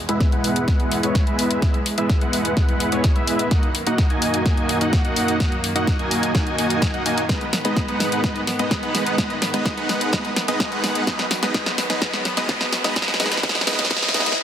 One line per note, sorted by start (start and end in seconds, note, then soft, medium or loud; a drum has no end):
0.00 3.48 E2 medium
0.00 1.60 B2 medium
0.00 3.48 G#3 medium
0.09 0.30 G#3 medium
0.09 0.30 B3 medium
0.09 0.30 E4 medium
0.09 0.30 B4 medium
0.09 0.30 E5 medium
0.09 closed hi-hat medium
0.21 kick loud
0.21 snare soft
0.21 closed hi-hat soft
0.32 0.65 G#3 medium
0.32 0.65 B3 medium
0.32 0.65 E4 medium
0.32 0.65 B4 medium
0.32 0.65 F#5 medium
0.32 closed hi-hat soft
0.44 open hi-hat medium
0.56 closed hi-hat medium
0.68 1.00 G#3 medium
0.68 1.00 B3 medium
0.68 1.00 E4 medium
0.68 1.00 B4 medium
0.68 1.00 F#5 loud
0.68 kick loud
0.68 snare soft
0.68 closed hi-hat medium
0.80 closed hi-hat soft
0.92 open hi-hat loud
1.03 1.24 G#3 loud
1.03 1.24 B3 medium
1.03 1.24 E4 medium
1.03 1.24 B4 medium
1.03 1.24 C#5 loud
1.03 closed hi-hat medium
1.15 kick loud
1.15 snare medium
1.15 closed hi-hat medium
1.27 1.60 G#3 medium
1.27 1.60 B3 medium
1.27 1.60 E4 medium
1.27 1.60 B4 medium
1.27 1.60 E5 medium
1.27 closed hi-hat soft
1.39 open hi-hat medium
1.51 closed hi-hat medium
1.62 1.79 G#3 medium
1.62 1.79 B3 medium
1.62 1.79 E4 medium
1.62 1.79 B4 medium
1.62 1.79 E5 medium
1.62 kick loud
1.62 snare soft
1.62 closed hi-hat medium
1.74 closed hi-hat soft
1.86 open hi-hat loud
1.98 2.19 G#3 medium
1.98 2.19 B3 medium
1.98 2.19 E4 medium
1.98 2.19 B4 medium
1.98 2.19 E5 medium
1.98 closed hi-hat medium
2.10 kick loud
2.10 snare soft
2.10 closed hi-hat soft
2.21 2.54 G#3 medium
2.21 2.54 B3 medium
2.21 2.54 E4 medium
2.21 2.54 B4 medium
2.21 2.54 F#5 medium
2.21 closed hi-hat soft
2.33 open hi-hat medium
2.45 closed hi-hat medium
2.57 2.89 G#3 medium
2.57 2.89 B3 medium
2.57 2.89 E4 medium
2.57 2.89 B4 medium
2.57 2.89 F#5 loud
2.57 kick loud
2.57 snare medium
2.57 closed hi-hat soft
2.69 closed hi-hat soft
2.80 open hi-hat loud
2.92 3.13 G#3 loud
2.92 3.13 B3 medium
2.92 3.13 E4 medium
2.92 3.13 B4 medium
2.92 3.13 C#5 loud
2.92 closed hi-hat soft
3.04 kick loud
3.04 snare medium
3.04 closed hi-hat medium
3.16 3.48 G#3 medium
3.16 3.48 B3 medium
3.16 3.48 E4 medium
3.16 3.48 B4 medium
3.16 3.48 E5 medium
3.16 closed hi-hat soft
3.27 open hi-hat medium
3.39 closed hi-hat medium
3.51 7.26 F#2 medium
3.51 14.34 D#3 medium
3.51 3.68 A#3 medium
3.51 7.25 A#3 medium
3.51 3.68 D#4 medium
3.51 3.68 F#4 medium
3.51 3.68 D#5 medium
3.51 3.68 F#5 medium
3.51 kick loud
3.51 snare medium
3.51 closed hi-hat medium
3.63 closed hi-hat soft
3.75 open hi-hat loud
3.87 4.07 A#3 medium
3.87 4.08 D#4 medium
3.87 4.08 F#4 medium
3.87 4.08 D#5 medium
3.87 4.08 F#5 loud
3.87 closed hi-hat soft
3.98 kick loud
3.98 snare medium
3.98 closed hi-hat soft
4.10 4.43 A#3 medium
4.10 4.43 D#4 medium
4.10 4.43 F#4 medium
4.10 4.43 D#5 medium
4.10 4.43 G#5 medium
4.10 closed hi-hat soft
4.22 open hi-hat loud
4.34 closed hi-hat soft
4.46 4.78 A#3 medium
4.46 4.78 D#4 medium
4.46 4.78 F#4 medium
4.46 4.78 D#5 medium
4.46 4.78 G#5 medium
4.46 kick loud
4.46 snare medium
4.46 closed hi-hat soft
4.57 closed hi-hat soft
4.69 open hi-hat loud
4.81 5.02 A#3 medium
4.81 5.02 D#4 medium
4.81 5.02 F#4 medium
4.81 5.02 D#5 medium
4.81 5.02 F#5 loud
4.81 closed hi-hat soft
4.93 kick loud
4.93 snare medium
4.93 closed hi-hat soft
5.05 5.37 A#3 medium
5.05 5.37 D#4 medium
5.05 5.37 F#4 medium
5.05 5.37 D#5 medium
5.05 5.37 F#5 medium
5.05 closed hi-hat soft
5.16 open hi-hat medium
5.28 closed hi-hat soft
5.40 5.57 A#3 medium
5.40 5.57 D#4 medium
5.40 5.57 F#4 medium
5.40 5.57 D#5 medium
5.40 5.57 F#5 medium
5.40 kick loud
5.40 snare medium
5.40 closed hi-hat medium
5.52 closed hi-hat soft
5.64 open hi-hat loud
5.75 5.96 A#3 medium
5.75 5.96 D#4 medium
5.75 5.96 F#4 medium
5.75 5.96 D#5 medium
5.75 5.96 F#5 loud
5.75 closed hi-hat medium
5.87 kick loud
5.87 snare medium
5.87 closed hi-hat soft
5.99 6.32 A#3 medium
5.99 6.32 D#4 medium
5.99 6.32 F#4 medium
5.99 6.32 D#5 medium
5.99 6.32 G#5 medium
5.99 closed hi-hat soft
6.11 open hi-hat medium
6.23 closed hi-hat medium
6.35 6.56 A#3 medium
6.35 6.56 D#4 medium
6.35 6.56 F#4 medium
6.35 6.56 D#5 medium
6.35 6.56 G#5 loud
6.35 kick loud
6.35 snare medium
6.35 closed hi-hat soft
6.47 closed hi-hat soft
6.58 6.91 A#3 medium
6.58 6.91 D#4 medium
6.58 6.91 F#4 medium
6.58 6.91 D#5 medium
6.58 6.91 G#5 medium
6.58 open hi-hat loud
6.70 closed hi-hat soft
6.82 kick loud
6.82 snare medium
6.82 closed hi-hat medium
6.94 7.03 A#3 medium
6.94 7.03 D#4 medium
6.94 7.03 F#4 medium
6.94 7.03 D#5 medium
6.94 7.03 F#5 medium
6.94 closed hi-hat soft
7.06 7.22 A#3 medium
7.06 7.22 D#4 medium
7.06 7.22 F#4 medium
7.06 7.22 D#5 medium
7.06 7.22 G#5 medium
7.06 open hi-hat medium
7.18 closed hi-hat soft
7.29 11.03 G#2 medium
7.29 7.46 G#3 medium
7.29 11.03 B3 medium
7.29 7.46 B3 medium
7.29 7.46 D#4 medium
7.29 7.46 B4 medium
7.29 7.46 D#5 medium
7.29 kick loud
7.29 snare medium
7.29 closed hi-hat medium
7.29 riser medium
7.41 closed hi-hat soft
7.53 snare medium
7.53 open hi-hat loud
7.65 7.85 G#3 medium
7.65 7.86 B3 medium
7.65 7.85 D#4 medium
7.65 7.85 B4 medium
7.65 7.86 D#5 medium
7.65 closed hi-hat soft
7.77 kick loud
7.77 snare medium
7.77 closed hi-hat soft
7.88 8.21 G#3 medium
7.88 8.21 B3 medium
7.88 8.21 D#4 medium
7.88 8.21 B4 medium
7.88 8.21 F#5 medium
7.88 closed hi-hat soft
8.00 snare medium
8.00 open hi-hat medium
8.12 closed hi-hat medium
8.24 8.40 G#3 medium
8.24 8.40 B3 medium
8.24 8.40 D#4 medium
8.24 8.40 B4 medium
8.24 8.40 D#5 medium
8.24 kick loud
8.24 snare medium
8.24 closed hi-hat soft
8.36 closed hi-hat soft
8.47 snare medium
8.47 open hi-hat loud
8.59 8.80 G#3 medium
8.59 8.80 B3 medium
8.59 8.80 D#4 medium
8.59 8.80 B4 medium
8.59 8.80 D#5 loud
8.59 closed hi-hat soft
8.71 kick loud
8.71 snare medium
8.71 closed hi-hat medium
8.83 9.15 G#3 medium
8.83 9.15 B3 medium
8.83 9.15 D#4 medium
8.83 9.15 B4 medium
8.83 9.15 F#5 medium
8.83 closed hi-hat soft
8.95 snare medium
8.95 open hi-hat medium
9.07 closed hi-hat soft
9.18 9.35 G#3 medium
9.18 9.35 B3 medium
9.18 9.35 D#4 medium
9.18 9.35 B4 medium
9.18 9.35 D#5 medium
9.18 kick loud
9.18 snare medium
9.18 closed hi-hat medium
9.30 closed hi-hat soft
9.42 snare medium
9.42 open hi-hat loud
9.54 9.74 G#3 medium
9.54 9.74 B3 medium
9.54 9.74 D#4 medium
9.54 9.74 B4 medium
9.54 9.75 D#5 medium
9.54 closed hi-hat medium
9.65 kick loud
9.65 snare medium
9.65 closed hi-hat soft
9.77 10.10 G#3 medium
9.77 10.10 B3 medium
9.77 10.10 D#4 medium
9.77 10.10 B4 medium
9.77 10.10 F#5 medium
9.77 closed hi-hat soft
9.89 snare medium
9.89 open hi-hat medium
10.01 closed hi-hat medium
10.13 10.29 G#3 medium
10.13 10.29 B3 medium
10.13 10.29 D#4 medium
10.13 10.29 B4 medium
10.13 10.29 D#5 medium
10.13 kick loud
10.13 snare medium
10.13 closed hi-hat soft
10.25 closed hi-hat soft
10.36 snare medium
10.36 open hi-hat loud
10.48 10.69 G#3 medium
10.48 10.69 B3 medium
10.48 10.69 D#4 medium
10.48 10.69 B4 medium
10.48 10.69 D#5 loud
10.48 closed hi-hat medium
10.60 kick loud
10.60 snare medium
10.60 closed hi-hat medium
10.72 11.04 G#3 medium
10.72 11.04 B3 medium
10.72 11.04 D#4 medium
10.72 11.04 B4 medium
10.72 11.04 F#5 medium
10.72 closed hi-hat soft
10.84 snare medium
10.84 open hi-hat medium
10.95 closed hi-hat medium
11.07 14.35 F#2 medium
11.07 12.94 F#3 medium
11.07 11.24 G#3 medium
11.07 14.35 B3 medium
11.07 11.24 B3 medium
11.07 11.24 D#4 medium
11.07 11.24 B4 medium
11.07 11.24 D#5 medium
11.07 kick loud
11.07 snare loud
11.07 closed hi-hat medium
11.19 snare medium
11.19 closed hi-hat soft
11.31 snare loud
11.31 open hi-hat loud
11.43 11.53 G#3 medium
11.43 11.53 B3 medium
11.43 11.53 D#4 medium
11.43 11.53 B4 medium
11.43 11.53 D#5 loud
11.43 snare medium
11.43 closed hi-hat medium
11.54 11.71 G#3 medium
11.54 11.71 B3 medium
11.54 11.71 D#4 medium
11.54 11.71 B4 medium
11.54 11.71 D#5 medium
11.54 kick loud
11.54 snare medium
11.54 closed hi-hat medium
11.66 snare medium
11.66 closed hi-hat soft
11.78 snare medium
11.78 open hi-hat medium
11.90 12.00 G#3 medium
11.90 12.00 B3 medium
11.90 12.00 D#4 medium
11.90 12.00 B4 medium
11.90 12.00 D#5 loud
11.90 snare medium
11.90 closed hi-hat medium
12.02 12.18 G#3 medium
12.02 12.18 B3 medium
12.02 12.18 D#4 medium
12.02 12.18 B4 medium
12.02 12.18 D#5 medium
12.02 kick loud
12.02 snare medium
12.02 closed hi-hat medium
12.14 snare medium
12.14 closed hi-hat soft
12.25 snare loud
12.25 open hi-hat loud
12.37 12.47 G#3 loud
12.37 12.47 B3 medium
12.37 12.47 D#4 medium
12.37 12.47 B4 medium
12.37 12.47 D#5 loud
12.37 snare medium
12.37 closed hi-hat medium
12.49 12.66 G#3 medium
12.49 12.66 B3 medium
12.49 12.66 D#4 medium
12.49 12.66 B4 medium
12.49 12.66 D#5 medium
12.49 kick loud
12.49 snare loud
12.49 closed hi-hat medium
12.61 snare medium
12.61 closed hi-hat soft
12.73 snare loud
12.73 open hi-hat medium
12.84 12.94 G#3 loud
12.84 12.94 B3 medium
12.84 12.94 D#4 medium
12.84 12.94 B4 medium
12.84 12.94 D#5 loud
12.84 snare medium
12.84 closed hi-hat medium
12.96 14.37 G#3 medium
12.96 13.13 G#3 medium
12.96 13.13 B3 medium
12.96 13.13 D#4 medium
12.96 13.13 B4 medium
12.96 13.13 D#5 medium
12.96 kick loud
12.96 snare loud
12.96 closed hi-hat medium
13.02 snare medium
13.08 snare medium
13.08 closed hi-hat soft
13.14 snare medium
13.20 13.36 G#3 medium
13.20 13.36 B3 medium
13.20 13.36 D#4 medium
13.20 13.36 B4 medium
13.20 13.36 D#5 medium
13.20 snare loud
13.20 open hi-hat loud
13.26 snare medium
13.32 snare medium
13.32 closed hi-hat medium
13.37 snare medium
13.43 13.60 G#3 medium
13.43 13.60 B3 medium
13.43 13.60 D#4 medium
13.43 13.60 B4 medium
13.43 13.60 D#5 medium
13.43 kick loud
13.43 snare loud
13.43 closed hi-hat medium
13.49 snare medium
13.55 snare medium
13.55 closed hi-hat soft
13.61 snare loud
13.67 13.84 G#3 medium
13.67 13.84 B3 medium
13.67 13.84 D#4 medium
13.67 13.84 B4 medium
13.67 13.84 D#5 medium
13.67 snare loud
13.67 open hi-hat medium
13.73 snare medium
13.79 snare loud
13.79 closed hi-hat medium
13.85 snare loud
13.91 14.07 G#3 medium
13.91 14.07 B3 medium
13.91 14.07 D#4 medium
13.91 14.07 B4 medium
13.91 14.07 D#5 medium
13.91 kick loud
13.91 snare loud
13.91 closed hi-hat medium
13.91 swell medium
13.97 snare medium
14.03 snare loud
14.03 closed hi-hat soft
14.08 snare loud
14.14 14.31 G#3 medium
14.14 14.31 B3 medium
14.14 14.31 D#4 medium
14.14 14.31 B4 medium
14.14 14.31 D#5 medium
14.14 snare loud
14.14 open hi-hat loud
14.20 snare loud
14.26 snare medium
14.26 closed hi-hat medium
14.32 snare medium